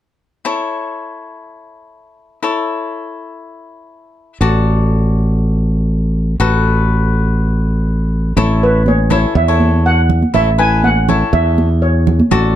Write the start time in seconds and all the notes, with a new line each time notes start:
0.45 E4 A4 C#5
2.43 E4 A4 C#5
4.41 A1 F#4 A4 D5
6.40 A1 F#4 A4 B4
8.37 A1 E4 A4 C#5, low conga
8.63 B4
8.86 C#5, high conga
9.10 E4 A4 C#5, low conga
9.35 E2 E5, low conga
9.48 E4 A4 C#5
9.60 high conga
9.86 F#5
10.10 low conga
10.22 high conga
10.34 A1 E4 A4 C#5 E5, low conga
10.58 E4 A4 B4 G#5
10.84 F#5, high conga
11.09 E4 A4 C#5, low conga
11.33 E2 E5, low conga
11.58 high conga
11.82 C#5
12.07 low conga
12.19 high conga
12.31 A1 F#4 A4 D5, low conga